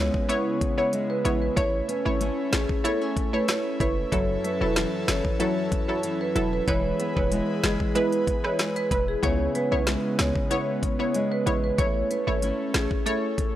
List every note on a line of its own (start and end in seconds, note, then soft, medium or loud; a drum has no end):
0.00 0.10 C#2 loud
0.00 1.55 C#3 medium
0.00 1.57 C#3 medium
0.00 0.92 G#3 medium
0.00 1.55 G#3 medium
0.00 0.28 B3 medium
0.00 1.55 B3 medium
0.00 1.57 E4 medium
0.00 13.55 E4 loud
0.00 0.18 C#5 medium
0.14 kick loud
0.29 0.74 B3 loud
0.29 1.64 B3 medium
0.29 0.74 E4 medium
0.29 0.74 C#5 loud
0.29 0.40 C#5 medium
0.29 closed hi-hat medium
0.61 kick medium
0.61 closed hi-hat medium
0.78 0.89 B3 medium
0.78 0.90 E4 medium
0.78 0.88 C#5 medium
0.78 0.90 C#5 medium
0.93 1.64 G#3 medium
0.93 closed hi-hat medium
1.10 1.20 B4 medium
1.25 1.50 A1 loud
1.25 1.38 B3 medium
1.25 1.38 E4 medium
1.25 1.38 C#5 medium
1.25 closed hi-hat medium
1.42 1.52 B4 medium
1.56 1.82 A1 loud
1.56 2.02 A3 medium
1.56 4.10 A3 medium
1.56 4.10 C#4 medium
1.56 2.02 E4 medium
1.56 2.21 E4 medium
1.56 1.68 C#5 loud
1.56 2.02 C#5 loud
1.56 kick loud
1.56 closed hi-hat medium
1.89 2.21 C#4 medium
1.89 2.00 B4 medium
1.89 closed hi-hat medium
2.05 2.31 G#1 medium
2.05 2.17 A3 medium
2.05 2.17 E4 medium
2.05 2.26 C#5 medium
2.05 2.17 C#5 medium
2.21 2.52 A3 medium
2.21 2.84 C#4 medium
2.21 4.12 E4 medium
2.21 closed hi-hat medium
2.53 2.66 A1 loud
2.53 3.48 A3 medium
2.53 2.74 G#4 medium
2.53 cross-stick medium
2.53 snare loud
2.53 closed hi-hat medium
2.69 kick medium
2.84 3.29 A3 medium
2.84 3.01 B3 medium
2.84 3.29 E4 medium
2.84 2.96 A4 medium
2.84 3.30 C#5 loud
2.84 closed hi-hat medium
3.01 4.19 C#4 medium
3.17 kick medium
3.17 closed hi-hat medium
3.33 3.45 A3 medium
3.33 3.45 E4 medium
3.33 3.43 B4 medium
3.33 3.45 C#5 medium
3.48 4.44 A3 medium
3.48 3.60 C#5 medium
3.48 cross-stick medium
3.48 snare loud
3.48 closed hi-hat medium
3.80 4.05 F#1 loud
3.80 3.93 A3 medium
3.80 3.93 E4 medium
3.80 3.91 B4 medium
3.80 3.94 C#5 medium
3.80 kick loud
3.80 closed hi-hat medium
4.12 4.37 F#1 loud
4.12 6.68 F#2 medium
4.12 4.57 F#3 medium
4.12 6.65 F#3 medium
4.12 6.65 C#4 medium
4.12 4.57 E4 medium
4.12 4.77 E4 medium
4.12 6.65 A4 loud
4.12 4.57 A4 loud
4.12 4.23 C#5 loud
4.12 kick loud
4.12 closed hi-hat medium
4.44 4.76 A3 medium
4.44 4.55 B4 medium
4.44 closed hi-hat medium
4.61 4.86 E1 medium
4.61 4.73 F#3 medium
4.61 4.73 E4 medium
4.61 4.73 A4 medium
4.61 4.82 B4 medium
4.76 5.08 E3 medium
4.76 5.39 A3 medium
4.76 6.68 E4 medium
4.76 cross-stick medium
4.76 snare loud
4.76 closed hi-hat medium
5.08 5.21 F#1 medium
5.08 6.04 E3 medium
5.08 5.29 C#5 medium
5.08 cross-stick medium
5.08 snare loud
5.08 closed hi-hat medium
5.25 kick loud
5.40 5.85 F#3 loud
5.40 6.75 A3 medium
5.40 5.85 E4 medium
5.40 5.85 A4 loud
5.40 5.51 C#5 medium
5.40 closed hi-hat medium
5.72 kick loud
5.72 closed hi-hat medium
5.88 6.00 F#3 medium
5.88 6.00 E4 medium
5.88 6.00 A4 medium
5.88 5.99 C#5 medium
6.03 6.68 E3 medium
6.03 closed hi-hat medium
6.21 6.31 B4 medium
6.35 6.60 E1 loud
6.35 6.49 F#3 medium
6.35 6.49 E4 medium
6.35 6.49 A4 medium
6.35 closed hi-hat medium
6.53 6.63 B4 medium
6.67 6.92 E1 loud
6.67 9.21 E3 medium
6.67 9.23 E3 medium
6.67 7.12 G#3 medium
6.67 7.13 E4 medium
6.67 7.33 E4 medium
6.67 9.20 G#4 medium
6.67 9.21 B4 loud
6.67 7.13 B4 loud
6.67 6.79 C#5 loud
6.67 kick loud
6.67 closed hi-hat medium
7.00 7.32 B3 medium
7.00 7.11 B4 medium
7.00 closed hi-hat medium
7.16 7.41 E1 medium
7.16 7.28 G#3 medium
7.16 7.28 E4 medium
7.16 7.28 B4 medium
7.16 7.38 C#5 medium
7.16 kick loud
7.32 7.63 G#3 medium
7.32 7.95 B3 medium
7.32 9.24 E4 medium
7.32 closed hi-hat medium
7.64 7.77 F#1 medium
7.64 8.59 G#3 medium
7.64 7.84 G#4 medium
7.64 cross-stick medium
7.64 snare loud
7.64 closed hi-hat medium
7.80 kick medium
7.95 8.40 G#3 loud
7.95 9.55 B3 medium
7.95 8.40 E4 medium
7.95 8.06 B4 medium
7.95 8.40 B4 loud
7.95 closed hi-hat medium
8.12 closed hi-hat medium
8.27 kick medium
8.27 closed hi-hat medium
8.44 8.55 G#3 medium
8.44 8.56 E4 medium
8.44 8.56 B4 medium
8.44 8.54 C#5 medium
8.44 cross-stick medium
8.59 9.87 G#3 medium
8.59 cross-stick medium
8.59 snare loud
8.59 closed hi-hat medium
8.76 8.86 B4 medium
8.76 closed hi-hat soft
8.91 9.16 E1 medium
8.91 9.04 G#3 medium
8.91 9.04 E4 medium
8.91 9.04 B4 medium
8.91 kick loud
8.91 closed hi-hat medium
9.08 9.18 G#4 medium
9.23 9.48 C#2 loud
9.23 11.76 C#3 medium
9.23 11.79 C#3 medium
9.23 11.76 G#3 medium
9.23 9.68 B3 loud
9.23 11.76 B3 medium
9.23 9.68 E4 medium
9.23 9.88 E4 medium
9.23 9.68 C#5 loud
9.23 9.34 C#5 loud
9.23 kick loud
9.23 closed hi-hat medium
9.55 9.87 B3 medium
9.55 9.66 B4 medium
9.55 closed hi-hat medium
9.71 9.97 B1 medium
9.71 9.83 B3 medium
9.71 9.83 E4 medium
9.71 9.93 B4 medium
9.71 9.83 C#5 medium
9.87 10.18 G#3 medium
9.87 10.50 B3 medium
9.87 11.79 E4 medium
9.87 cross-stick medium
9.87 snare loud
9.87 closed hi-hat medium
10.19 10.32 C#2 medium
10.19 11.14 G#3 medium
10.19 10.40 C#5 medium
10.19 cross-stick medium
10.19 snare loud
10.19 closed hi-hat medium
10.36 kick loud
10.50 10.95 B3 loud
10.50 11.85 B3 medium
10.50 10.96 E4 medium
10.50 10.62 C#5 medium
10.50 10.96 C#5 loud
10.50 closed hi-hat medium
10.83 kick medium
10.83 closed hi-hat medium
10.99 11.11 B3 medium
10.99 11.11 E4 medium
10.99 11.11 C#5 medium
10.99 11.09 C#5 medium
11.14 11.85 G#3 medium
11.14 closed hi-hat medium
11.32 11.41 B4 medium
11.46 11.71 A1 loud
11.46 11.59 B3 medium
11.46 11.59 E4 medium
11.46 11.60 C#5 medium
11.46 closed hi-hat medium
11.64 11.73 B4 medium
11.78 12.03 A1 loud
11.78 12.23 A3 medium
11.78 13.55 A3 medium
11.78 13.55 C#4 medium
11.78 12.23 E4 medium
11.78 12.43 E4 medium
11.78 12.23 C#5 loud
11.78 11.89 C#5 loud
11.78 kick loud
11.78 closed hi-hat medium
12.11 12.43 C#4 medium
12.11 12.21 B4 medium
12.11 closed hi-hat medium
12.27 12.52 G#1 medium
12.27 12.39 A3 medium
12.27 12.39 E4 medium
12.27 12.48 C#5 medium
12.27 12.39 C#5 medium
12.42 12.74 A3 medium
12.42 13.06 C#4 medium
12.42 13.55 E4 medium
12.42 closed hi-hat medium
12.74 12.87 A1 loud
12.74 13.55 A3 medium
12.74 12.95 G#4 medium
12.74 cross-stick medium
12.74 snare loud
12.74 closed hi-hat medium
12.91 kick medium
13.06 13.51 A3 loud
13.06 13.55 C#4 medium
13.06 13.51 E4 medium
13.06 13.17 A4 medium
13.06 13.51 C#5 loud
13.06 closed hi-hat medium
13.38 kick loud
13.38 closed hi-hat medium